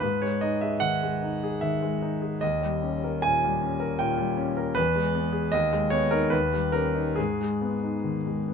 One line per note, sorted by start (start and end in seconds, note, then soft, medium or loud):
0.00 2.37 G#2 soft
0.00 0.21 B4 medium
0.22 0.54 G#3 soft
0.22 0.42 C#5 medium
0.41 0.74 D#4 soft
0.41 0.61 D#5 medium
0.61 0.94 G#4 soft
0.61 0.81 E5 medium
0.80 1.13 D#3 soft
0.80 1.61 F#5 medium
1.03 1.34 G#3 soft
1.22 1.54 D#4 soft
1.44 1.75 G#4 soft
1.61 1.94 D#3 soft
1.61 2.41 E5 medium
1.82 2.14 G#3 soft
2.02 2.34 D#4 soft
2.22 2.42 G#4 soft
2.41 4.73 D#2 soft
2.41 3.24 D#5 medium
2.62 2.95 G3 soft
2.82 3.16 C#4 soft
3.04 3.36 A#4 soft
3.22 3.55 A#2 soft
3.22 3.99 G#5 medium
3.44 3.74 G3 soft
3.62 3.92 C#4 soft
3.80 4.11 A#4 soft
3.99 4.30 A#2 soft
3.99 4.76 G5 medium
4.18 4.49 G3 soft
4.37 4.68 C#4 soft
4.57 4.76 A#4 soft
4.75 5.50 E2 medium
4.75 5.52 B4 medium
4.95 5.25 G#3 soft
5.15 5.45 B3 soft
5.33 5.52 G#4 soft
5.52 6.30 D#2 medium
5.52 5.91 D#5 medium
5.72 6.04 G#3 soft
5.90 6.24 B3 soft
5.90 6.11 C#5 medium
6.11 6.33 D#4 medium
6.11 6.32 A#4 medium
6.30 7.15 D#2 medium
6.30 6.73 B4 medium
6.54 6.87 G3 soft
6.72 7.09 C#4 soft
6.72 7.17 A#4 medium
6.95 7.17 D#4 soft
7.16 8.54 G#2 soft
7.16 8.54 G#4 medium
7.40 7.75 G#3 soft
7.61 7.96 B3 soft
7.83 8.17 D#4 soft
8.04 8.38 D#3 soft
8.26 8.54 G#3 soft
8.48 8.54 B3 soft